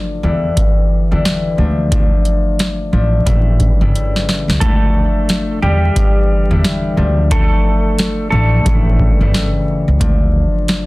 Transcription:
Already playing: harp F3 A3 D4
0.23 upright bass E2, harp D3 E3 G3 B3 E4
0.57 kick, closed hi-hat
1.11 upright bass E2, harp D3 E3 G3 B3 E4
1.25 snare, closed hi-hat
1.57 upright bass D2, harp F3 A3 D4
1.91 harp F3 A3 D4, kick, closed hi-hat
2.25 closed hi-hat
2.59 snare, closed hi-hat
2.93 upright bass A1, harp F3 A3 D4
3.25 upright bass A1, harp C#3 E3 G3 A3 E4, kick, closed hi-hat
3.60 kick, closed hi-hat
3.81 upright bass G1, harp C#3 E3 G3 A3 E4
3.95 closed hi-hat
4.16 snare
4.29 snare
4.48 upright bass C#2, snare
4.60 upright bass D2, harp F3 A3 D4, clean electric guitar A3 A4, kick, closed hi-hat
5.29 snare, closed hi-hat
5.62 upright bass E2, harp D3 E3 G3 B3 E4, clean electric guitar G3 G4
5.96 kick, closed hi-hat
6.50 upright bass E2, harp D3 E3 G3 B3 E4
6.64 snare, closed hi-hat
6.97 upright bass D2, harp F3 A3 D4
7.30 harp F3 A3 D4, clean electric guitar A3 A4, kick, closed hi-hat
7.99 snare, closed hi-hat
8.30 upright bass A1, harp F3 A3 D4, clean electric guitar A3 A4
8.63 upright bass A1, harp C#3 E3 G3 A3, kick, closed hi-hat
8.68 harp E4
8.99 kick
9.20 upright bass G1, harp C#3 E3 G3 A3 E4
9.34 snare, closed hi-hat
9.88 upright bass C#2
10.00 upright bass D2, harp F3 A3 D4, kick, closed hi-hat
10.68 snare, closed hi-hat

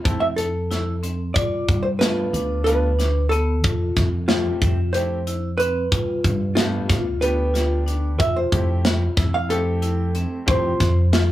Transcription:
0.04 upright bass F2, grand piano A3 C4 E4 A4, vibraphone E4, kick, closed hi-hat
0.20 hollow-body jazz guitar E5
0.36 hollow-body jazz guitar A4, closed hi-hat
0.71 vibraphone E4, snare, closed hi-hat
1.03 vibraphone C4, closed hi-hat
1.34 upright bass G2, vibraphone F4, hollow-body jazz guitar D5, kick, closed hi-hat
1.68 upright bass G2, kick, closed hi-hat
1.83 hollow-body jazz guitar C5
1.99 grand piano A3 B3 D4 F4, vibraphone F4, hollow-body jazz guitar B4, snare, closed hi-hat
2.33 upright bass D2, vibraphone D4, closed hi-hat
2.64 grand piano A3 B3 D4 F4, hollow-body jazz guitar B4, closed hi-hat
2.99 vibraphone D4, snare, closed hi-hat
3.29 vibraphone B3, hollow-body jazz guitar A4, closed hi-hat
3.64 upright bass F2, vibraphone F4, kick, closed hi-hat
3.96 upright bass F2, kick, snare, closed hi-hat
4.28 grand piano A3 C4 G4 E5, hollow-body jazz guitar F4, vibraphone F4, snare, closed hi-hat
4.62 upright bass F2, vibraphone E5, kick, closed hi-hat
4.93 grand piano A3 C4 E4 G4, hollow-body jazz guitar C5, closed hi-hat
5.27 vibraphone E4, closed hi-hat
5.58 vibraphone C4, hollow-body jazz guitar B4, closed hi-hat
5.92 upright bass G2, vibraphone F4, kick, closed hi-hat
6.24 upright bass G2, kick, closed hi-hat
6.55 grand piano A3 B3 D4 F4, hollow-body jazz guitar G4, vibraphone G4, snare, closed hi-hat
6.89 upright bass D2, vibraphone F4, kick, snare, closed hi-hat
7.02 hollow-body jazz guitar F4
7.21 grand piano A3 B3 D4 G4, hollow-body jazz guitar B4, closed hi-hat
7.54 vibraphone F4, snare, closed hi-hat
7.86 vibraphone D4, closed hi-hat
8.19 upright bass F2, vibraphone F4, hollow-body jazz guitar E5, kick, closed hi-hat
8.36 hollow-body jazz guitar C5
8.52 upright bass F2, grand piano A3 C4 E4 G4, kick, closed hi-hat
8.85 vibraphone F4, snare, closed hi-hat
9.17 upright bass F2, vibraphone E4, kick, snare, closed hi-hat
9.34 hollow-body jazz guitar F5
9.49 grand piano A3 C4 E4 G4, hollow-body jazz guitar A4, closed hi-hat
9.82 vibraphone E4, closed hi-hat
10.15 vibraphone C4, closed hi-hat
10.46 upright bass F2, grand piano A3 C4 E4 G4, vibraphone F4, hollow-body jazz guitar C5, kick, closed hi-hat
10.80 upright bass F2, kick, snare, closed hi-hat
11.13 vibraphone F4, hollow-body jazz guitar F4, snare, closed hi-hat

